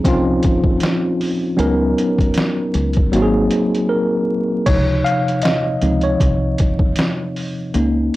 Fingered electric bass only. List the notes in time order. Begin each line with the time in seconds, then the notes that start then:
0.05 C2
1.59 C#2
2.75 C#2
3.13 G#1
4.67 C#2
5.82 C#2
6.20 C2
7.75 C#2